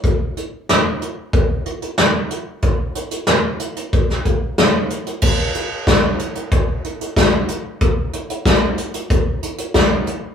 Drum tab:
CC |----------------|----------------|x---------------|----------------|
HH |x-x-x-x-x-xxx-x-|x-xxx-xxx-x-x-xx|--x-x-xxx-xxx-x-|x-xxx-xxx-xxx-x-|
SD |----o-------o---|----o----o--o---|----o-------o---|----o-------o---|
BD |o-------o-------|o-------o-o-----|o---o---o---o---|o---o---o---o---|